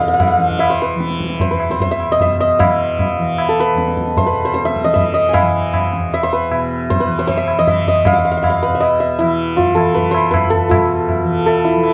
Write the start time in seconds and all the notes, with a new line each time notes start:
Already playing: E2 B2 E3 A4 C5 D#5
0.01 F5
0.08 F5
0.13 F5
0.20 F5, tabla na, tabla ge
0.27 F5
0.37 E3, tabla te
0.50 tabla ge
0.59 E5, tabla na
0.70 C5
0.82 B4
0.95 E3
1.00 tabla te
1.10 tabla te
1.20 tabla ke
1.30 tabla te
1.40 C5, tabla tin, tabla ge
1.51 E2 B4
1.60 tabla na
1.70 C5, tabla ke
1.80 C5, tabla tin, tabla ge
1.91 E5
2.00 tabla na
2.09 B2 D#5
2.20 E5, tabla tin, tabla ge
2.40 D#5
2.59 F5, tabla na, tabla ge
2.64 E3
2.99 tabla na, tabla ge
3.19 E3
3.38 tabla na
3.49 A4
3.60 B4
3.74 E2, tabla te
3.88 tabla te
3.97 tabla ke
4.07 tabla te
4.17 C5, tabla tin, tabla ge
4.26 B2 B4
4.45 C5
4.54 C5, tabla te
4.65 E5, tabla te
4.76 tabla ke
4.84 E3 D#5, tabla te
4.94 E5, tabla tin, tabla ge
5.14 D#5
5.29 G#5
5.33 F5, tabla na, tabla ge
5.41 E3
5.74 tabla na, tabla ge
5.93 E2, tabla te
6.13 E5, tabla na
6.23 C5
6.33 B4
6.50 B2, tabla na
6.90 C5, tabla tin, tabla ge
7.00 B4
7.07 E3
7.19 C5
7.27 C5, tabla tin, tabla ge
7.37 E5
7.48 tabla na
7.59 E3 D#5
7.67 E5, tabla na, tabla ge
7.87 D#5, tabla ge
8.05 F5, tabla na, tabla ge
8.13 E2 F5
8.18 F5
8.25 F5
8.32 F5
8.37 F5
8.43 F5, tabla na, tabla ge
8.50 F5
8.63 B4
8.69 B2
8.75 E5
8.80 D#5, tabla na
9.00 E5
9.19 E3 E4, tabla na
9.57 F4, tabla tin, tabla ge
9.75 E3 A4, tabla na
9.94 B4, tabla tin, tabla ge
10.11 C5, tabla na
10.29 E2 B4
10.34 tabla na, tabla ge
10.50 A4, tabla ge
10.69 B2 F4, tabla na, tabla ge
11.09 tabla na, tabla ge
11.24 E3
11.46 A4, tabla na
11.65 E4
11.76 E3
11.84 tabla na